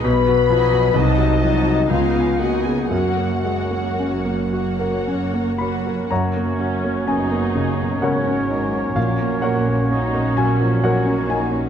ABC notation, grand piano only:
X:1
M:3/4
L:1/16
Q:1/4=63
K:F#
V:1 name="Grand piano"
z12 | z8 z2 b2 | [cfa]4 g4 [Acf]4 | e2 [Acf]4 g2 [Acf]2 g2 |]
V:2 name="Grand piano"
B,,, F, E, F, =C,, _G, E, G, ^C,, B, A, B, | F,, A, G, A, C A, F A C A, F A | F,, A, F A, C A, C, B,, C, C D C | A,, A, F A, C A, F, E, F, C D C |]